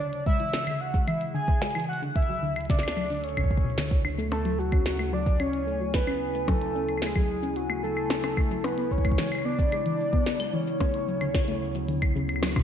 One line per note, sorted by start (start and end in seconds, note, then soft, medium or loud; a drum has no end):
0.00 2.16 C#3 medium
0.00 0.12 D3 medium
0.00 2.16 F#3 medium
0.00 2.16 B3 medium
0.00 2.16 E4 medium
0.00 0.25 D5 loud
0.13 closed hi-hat medium
0.26 0.37 G#3 medium
0.26 0.82 E5 loud
0.26 kick loud
0.40 0.46 E3 medium
0.40 closed hi-hat soft
0.54 snare loud
0.54 closed hi-hat medium
0.67 0.80 D3 medium
0.67 closed hi-hat medium
0.67 claves medium
0.81 1.07 F#5 loud
0.94 1.04 G#3 medium
0.94 2.16 G#4 medium
0.94 kick loud
1.07 1.14 E3 medium
1.07 1.33 E5 loud
1.07 closed hi-hat medium
1.07 claves medium
1.21 closed hi-hat medium
1.34 1.47 D3 medium
1.34 1.85 G#5 loud
1.48 kick loud
1.61 1.72 G#3 medium
1.61 snare loud
1.61 closed hi-hat soft
1.71 closed hi-hat soft
1.75 1.81 E3 medium
1.75 closed hi-hat soft
1.75 claves medium
1.80 closed hi-hat medium
1.84 closed hi-hat soft
1.89 2.01 F#5 loud
1.93 closed hi-hat soft
2.02 2.15 D3 medium
2.16 8.64 D2 medium
2.16 2.66 E5 loud
2.16 kick loud
2.16 closed hi-hat medium
2.22 closed hi-hat medium
2.29 2.39 F#3 medium
2.37 12.63 C#3 medium
2.43 2.49 D3 medium
2.56 closed hi-hat soft
2.56 claves soft
2.61 closed hi-hat soft
2.65 closed hi-hat soft
2.70 2.82 C#3 medium
2.70 4.32 A4 medium
2.70 3.25 D5 loud
2.70 kick loud
2.70 snare medium
2.70 closed hi-hat medium
2.74 closed hi-hat soft
2.79 snare medium
2.79 closed hi-hat soft
2.83 closed hi-hat medium
2.83 claves soft
2.88 snare loud
2.88 claves soft
2.92 claves soft
2.97 3.07 F#3 medium
2.97 claves soft
3.01 12.63 F#3 medium
3.01 claves soft
3.06 claves soft
3.10 3.16 D3 medium
3.10 closed hi-hat soft
3.12 12.63 B3 medium
3.12 12.63 E4 medium
3.12 closed hi-hat soft
3.15 closed hi-hat soft
3.17 closed hi-hat soft
3.19 closed hi-hat soft
3.21 closed hi-hat soft
3.24 4.05 C#5 medium
3.24 closed hi-hat medium
3.37 3.50 C#3 medium
3.37 kick soft
3.37 closed hi-hat medium
3.37 claves medium
3.44 kick medium
3.51 kick medium
3.57 kick medium
3.64 3.74 B2 medium
3.78 3.88 D3 loud
3.78 snare loud
3.78 closed hi-hat medium
3.91 kick loud
3.91 closed hi-hat medium
4.05 4.15 D3 medium
4.05 claves medium
4.18 4.24 A3 loud
4.32 4.42 A3 medium
4.32 4.60 A4 loud
4.32 closed hi-hat medium
4.32 percussion blips medium
4.45 4.51 F#3 medium
4.45 closed hi-hat soft
4.59 5.14 F#4 loud
4.72 4.82 C#4 medium
4.72 kick loud
4.72 closed hi-hat soft
4.72 claves soft
4.86 10.80 G#5 medium
4.86 snare loud
4.86 closed hi-hat medium
4.99 5.10 A3 medium
4.99 closed hi-hat soft
4.99 claves medium
5.13 5.19 F#3 medium
5.13 5.41 D5 loud
5.26 kick loud
5.40 5.50 C#4 medium
5.40 5.93 C#5 loud
5.40 closed hi-hat medium
5.40 claves medium
5.53 closed hi-hat medium
5.67 5.77 A3 medium
5.80 5.87 F#3 medium
5.94 6.49 B4 loud
5.94 kick loud
5.94 snare loud
5.94 closed hi-hat medium
6.07 6.18 C#4 medium
6.07 closed hi-hat soft
6.07 claves medium
6.34 6.45 A3 medium
6.48 6.54 F#3 medium
6.48 7.04 A4 loud
6.48 kick loud
6.48 closed hi-hat medium
6.48 percussion blips medium
6.62 closed hi-hat medium
6.75 6.85 C#4 medium
6.89 closed hi-hat soft
6.89 claves soft
6.98 claves soft
7.02 7.12 A3 medium
7.02 7.58 G#4 loud
7.02 snare loud
7.02 closed hi-hat medium
7.07 claves soft
7.16 7.22 F#3 medium
7.16 kick loud
7.16 closed hi-hat medium
7.16 claves medium
7.43 7.53 C#4 medium
7.56 7.83 F#4 medium
7.56 closed hi-hat medium
7.70 7.80 A3 medium
7.70 claves medium
7.83 7.89 F#3 medium
7.83 8.66 A4 loud
7.97 claves medium
8.10 8.20 C#4 medium
8.10 snare loud
8.10 closed hi-hat medium
8.10 percussion blips medium
8.24 closed hi-hat soft
8.24 percussion blips medium
8.24 claves medium
8.37 8.47 A3 medium
8.37 kick loud
8.37 claves medium
8.51 8.57 F#3 medium
8.64 8.93 B4 loud
8.64 closed hi-hat medium
8.64 percussion blips loud
8.78 8.88 B3 medium
8.78 closed hi-hat medium
8.91 9.45 C#5 loud
8.91 kick soft
8.98 kick medium
9.05 9.15 G#3 medium
9.05 kick medium
9.05 closed hi-hat soft
9.05 claves medium
9.12 kick medium
9.18 9.24 E3 medium
9.18 snare loud
9.18 closed hi-hat medium
9.32 closed hi-hat medium
9.32 claves medium
9.35 claves soft
9.39 claves soft
9.42 claves soft
9.45 9.55 B3 medium
9.45 10.55 D5 loud
9.45 claves soft
9.49 claves soft
9.52 claves soft
9.55 kick loud
9.55 claves soft
9.72 9.83 G#3 medium
9.72 closed hi-hat medium
9.72 claves medium
9.86 9.92 E3 medium
9.86 closed hi-hat medium
10.13 10.23 B3 medium
10.13 kick loud
10.26 snare loud
10.26 closed hi-hat medium
10.40 10.50 G#3 medium
10.40 closed hi-hat soft
10.40 claves medium
10.53 10.59 E3 medium
10.53 12.43 C#5 loud
10.80 12.63 D2 medium
10.80 10.91 A3 medium
10.80 kick loud
10.80 closed hi-hat medium
10.80 percussion blips loud
10.94 closed hi-hat medium
11.07 11.18 F#3 medium
11.21 11.27 D3 medium
11.21 closed hi-hat soft
11.21 claves medium
11.35 kick loud
11.35 snare loud
11.35 closed hi-hat medium
11.48 11.58 A3 medium
11.48 closed hi-hat medium
11.75 11.85 F#3 medium
11.75 12.63 A4 medium
11.75 closed hi-hat soft
11.89 11.95 D3 medium
11.89 closed hi-hat medium
12.02 kick loud
12.02 closed hi-hat medium
12.02 claves medium
12.16 12.26 C#3 loud
12.29 closed hi-hat soft
12.29 claves medium
12.36 claves soft
12.43 12.55 F#3 medium
12.43 snare loud
12.43 closed hi-hat soft
12.43 percussion blips medium
12.43 claves soft
12.46 closed hi-hat soft
12.49 closed hi-hat soft
12.49 claves soft
12.53 closed hi-hat medium
12.56 12.63 B2 loud
12.56 kick loud
12.56 closed hi-hat medium
12.56 percussion blips medium
12.56 claves medium
12.59 closed hi-hat medium